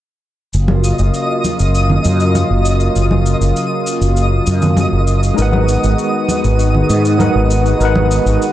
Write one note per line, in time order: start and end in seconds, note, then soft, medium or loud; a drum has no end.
0.53 0.91 F#1 medium
0.53 5.34 C#3 medium
0.53 5.34 F#3 medium
0.53 5.34 A#3 medium
0.53 5.34 F4 medium
0.53 8.53 D#5 medium
0.53 8.53 D#6 medium
0.53 shaker soft
0.68 high conga medium
0.84 shaker medium
0.99 1.09 F#1 medium
0.99 shaker soft
1.14 shaker soft
1.44 high conga medium
1.44 shaker medium
1.59 1.97 F#1 medium
1.59 shaker soft
1.75 shaker soft
1.90 low conga medium
2.05 2.42 F#2 medium
2.05 shaker medium
2.20 shaker soft
2.35 high conga medium
2.35 shaker soft
2.50 2.88 F#1 medium
2.65 shaker medium
2.80 shaker soft
2.96 3.33 F#1 medium
2.96 shaker soft
3.11 high conga medium
3.26 shaker medium
3.41 3.51 F#1 medium
3.41 shaker soft
3.56 shaker soft
3.87 shaker medium
4.01 4.39 F#1 medium
4.01 shaker soft
4.17 shaker soft
4.47 4.85 F#2 medium
4.47 shaker medium
4.62 low conga medium
4.62 shaker soft
4.76 high conga medium
4.76 low conga medium
4.76 shaker soft
4.92 5.30 F#1 medium
5.07 shaker medium
5.23 shaker soft
5.34 8.53 D#3 medium
5.34 7.14 G#3 medium
5.34 8.53 G#3 medium
5.34 8.53 B3 medium
5.34 7.15 D#4 medium
5.34 8.53 F#4 medium
5.34 shaker soft
5.38 5.76 G#1 medium
5.38 7.16 A#4 medium
5.38 7.17 B4 medium
5.38 7.18 F#5 loud
5.53 high conga medium
5.69 shaker medium
5.84 5.94 G#1 medium
5.84 shaker soft
5.99 shaker soft
6.29 high conga medium
6.29 shaker medium
6.44 6.82 G#1 medium
6.44 shaker soft
6.59 shaker soft
6.75 low conga medium
6.89 7.27 G#2 medium
6.89 shaker medium
7.05 shaker soft
7.18 7.44 G#3 medium
7.18 7.45 D#4 medium
7.18 7.46 A#4 medium
7.18 7.46 B4 medium
7.18 7.46 F#5 loud
7.18 high conga medium
7.18 shaker soft
7.35 7.73 G#1 medium
7.51 shaker medium
7.66 shaker soft
7.77 8.18 G#1 medium
7.77 8.53 G#3 loud
7.77 8.53 D#4 medium
7.77 shaker soft
7.81 8.53 A#4 medium
7.81 8.53 B4 medium
7.81 8.53 F#5 loud
7.96 high conga medium
8.11 shaker medium
8.26 8.36 G#1 medium
8.26 shaker soft
8.42 shaker soft